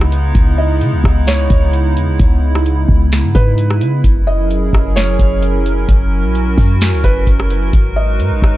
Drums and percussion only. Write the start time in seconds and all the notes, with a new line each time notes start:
0.01 cross-stick
0.12 closed hi-hat
0.35 kick, closed hi-hat
0.81 closed hi-hat
1.04 kick, cross-stick
1.27 snare, closed hi-hat
1.50 kick, closed hi-hat
1.73 closed hi-hat
1.97 closed hi-hat
2.20 kick, closed hi-hat
2.55 cross-stick
2.66 closed hi-hat
2.89 kick
3.12 snare, closed hi-hat
3.35 kick, closed hi-hat
3.58 closed hi-hat
3.70 cross-stick
3.81 closed hi-hat
4.04 kick, closed hi-hat
4.51 closed hi-hat
4.73 kick, cross-stick
4.97 snare, closed hi-hat
5.19 kick, closed hi-hat
5.42 closed hi-hat
5.66 closed hi-hat
5.89 kick, closed hi-hat
6.35 closed hi-hat
6.58 kick, open hi-hat
6.81 snare, closed hi-hat
7.04 kick, closed hi-hat
7.27 kick, closed hi-hat
7.40 cross-stick
7.50 closed hi-hat
7.73 kick, closed hi-hat
8.20 closed hi-hat
8.42 kick, cross-stick